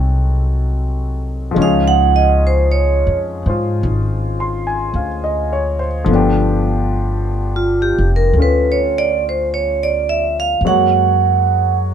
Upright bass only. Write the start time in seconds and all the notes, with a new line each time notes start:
Already playing: C2
1.56 C#2
3.07 F2
3.46 G#2
3.83 G#1
4.94 D2
6.06 G1
7.98 F1
8.33 D2
10.61 F#2